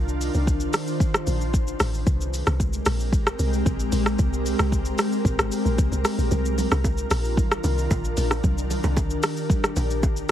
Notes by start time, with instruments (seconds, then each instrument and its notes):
Already playing: log drum bass C2, ambient pad D#3 D4 F4 C5
0.09 shaker
0.21 open hi-hat, shaker
0.34 log drum bass C2, shaker
0.47 kick, shaker
0.60 shaker
0.73 cross-stick, open hi-hat, shaker
0.87 shaker
1.00 kick, shaker
1.14 cross-stick, shaker
1.27 log drum bass A#1, open hi-hat, shaker
1.41 shaker
1.54 kick, shaker
1.67 shaker
1.80 log drum bass A1, cross-stick, open hi-hat, shaker
1.94 shaker
2.07 log drum bass C2, ambient pad G#3 C4 G4 A#4, kick, shaker
2.21 shaker
2.34 open hi-hat, shaker
2.47 log drum bass C2, cross-stick, shaker
2.60 kick, shaker
2.73 shaker
2.86 log drum bass A#1, cross-stick, open hi-hat, shaker
3.00 shaker
3.13 kick, shaker
3.27 cross-stick, shaker
3.39 log drum bass C2, open hi-hat, shaker
3.53 shaker
3.66 log drum bass A#1, kick, shaker
3.80 shaker
3.92 log drum bass A#1, open hi-hat, shaker
4.06 cross-stick, shaker
4.19 log drum bass C2, kick, shaker
4.33 shaker
4.46 open hi-hat, shaker
4.59 log drum bass C2, cross-stick, shaker
4.72 kick, shaker
4.85 shaker
4.98 cross-stick, open hi-hat, shaker
5.12 shaker
5.25 log drum bass A#1, kick, shaker
5.39 log drum bass G#1, cross-stick, shaker
5.52 open hi-hat, shaker
5.65 log drum bass A#1, shaker
5.78 log drum bass C2, kick, shaker
5.92 log drum bass C2, shaker
6.05 cross-stick, open hi-hat, shaker
6.18 log drum bass A#1, shaker
6.31 log drum bass C2, ambient pad D#3 D4 F4, low conga, shaker
6.46 shaker
6.58 open hi-hat, low bongo, low conga, shaker
6.71 log drum bass C2, cross-stick, high bongo, low bongo, shaker
6.84 kick, high bongo, shaker
6.98 shaker
7.11 log drum bass A#1, cross-stick, open hi-hat, shaker
7.25 shaker
7.37 kick, low conga, shaker
7.51 cross-stick, shaker
7.64 log drum bass C2, open hi-hat, low bongo, shaker
7.78 shaker
7.91 log drum bass A#1, kick, high bongo, shaker
8.05 shaker
8.17 log drum bass A#1, open hi-hat, high bongo, shaker
8.31 cross-stick, low bongo, shaker
8.44 log drum bass C2, ambient pad G4, kick, low conga, shaker
8.58 shaker
8.70 open hi-hat, low bongo, low conga, shaker
8.84 log drum bass C2, high bongo, low bongo, shaker
8.97 kick, high bongo, shaker
9.10 shaker
9.23 cross-stick, open hi-hat, shaker
9.37 shaker
9.50 kick, low conga, shaker
9.64 cross-stick, shaker
9.76 log drum bass A#1, open hi-hat, low bongo, shaker
9.90 shaker
10.03 kick, high bongo, shaker
10.17 shaker